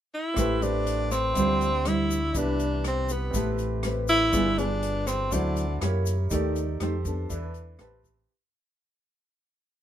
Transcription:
0.14 E4
0.34 A1 A3 C4 E4, kick, cross-stick, closed hi-hat, shaker
0.38 G4 B4
0.62 C4 D4 G4 B4, closed hi-hat, shaker
0.87 closed hi-hat
1.11 C4, cross-stick, closed hi-hat, shaker
1.33 D2 D3 G3 C4 D4 E4 G4, kick, closed hi-hat, shaker
1.38 F4 C5
1.61 closed hi-hat, shaker
1.85 G3 C4 E4, cross-stick, closed hi-hat
2.10 closed hi-hat, shaker
2.32 C2 D4 E4 G4, kick, closed hi-hat, shaker
2.36 C3 E3 B3 D4 B4
2.60 closed hi-hat, shaker
2.84 C4, cross-stick, closed hi-hat
3.09 B3 G4 B4, closed hi-hat, shaker
3.31 A1 C4 E4, kick, closed hi-hat, shaker
3.35 A3 G4 B4
3.58 closed hi-hat, shaker
3.83 C4 G4 B4, cross-stick, closed hi-hat
4.08 E4, closed hi-hat, shaker
4.31 G1 G3 B3 D4 F4 G#4, kick, cross-stick, closed hi-hat, shaker
4.36 B4
4.58 B3 D4 F4 G#4, closed hi-hat, shaker
4.83 closed hi-hat
5.07 C4, cross-stick, closed hi-hat, shaker
5.31 D2 D3 F#3 C4 D4 E4 F#4 A4 C5, kick, closed hi-hat, shaker
5.56 closed hi-hat, shaker
5.81 F#2 A#3 E4 G4 A#4 C#5, cross-stick, closed hi-hat
6.06 closed hi-hat, shaker
6.30 D#2 D#3 A3 D#4 G4 A4 D5, kick, closed hi-hat, shaker
6.56 closed hi-hat, shaker
6.80 F2 A3 D#4 G4 A4 C5, cross-stick, closed hi-hat
7.05 B3 D4 A4, kick, closed hi-hat, shaker
7.29 E2 E3 D4 E4 A4 B4, kick, closed hi-hat, shaker
7.54 closed hi-hat, shaker
7.79 A1 C4 E4 G4 B4 A5, cross-stick, closed hi-hat
8.04 kick, closed hi-hat, shaker

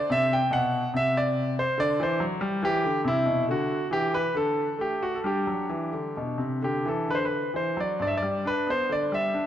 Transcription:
0.10 C3 E5
0.33 G5
0.51 B2 F#5
0.94 C3 E5
1.17 D5
1.59 C5
1.78 D3 D5
2.00 E3 C5
2.20 F#3
2.41 G3
2.63 E3 G4
2.84 D3
3.05 C3 E4
3.26 B2
3.48 D3 F#4
3.91 E3 G4
4.14 B4
4.35 D3 A4
4.79 A3 G4
5.03 F#4
5.15 A4
5.24 G3 D4 G4
5.47 F#3
5.70 E3
5.93 D3
6.17 B2
6.38 C3
6.62 D3 G4
6.85 E3 A4
7.08 D3 B4
7.15 C5
7.25 B4
7.54 E3 C5
7.77 F#3 D5
7.99 G2 D5
8.07 E5
8.17 D5
8.22 G3
8.45 D4 B4
8.67 B3 C5
8.89 D3 D5
9.12 G3 E5
9.34 D4

